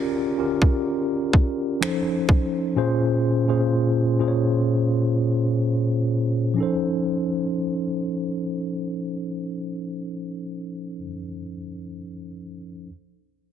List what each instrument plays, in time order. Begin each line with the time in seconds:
Already playing: tine electric piano C#4 F4 G4 G#4 A#4 D5
0.38 tine electric piano C#4 F4 G4 A#4
0.62 kick
1.33 kick
1.81 tine electric piano F3 C#4 D#4 A4 C5, finger snap
2.29 kick
2.76 tine electric piano A#2 C#4 F4 G#4 C5
3.48 tine electric piano A#2 C#4 F4 G#4 C5
4.19 tine electric piano A#2 C#4 F4 G#4 C5
4.28 tine electric piano C#5
6.54 tine electric piano F3 C#4
6.58 tine electric piano D#4 A4
6.63 tine electric piano C5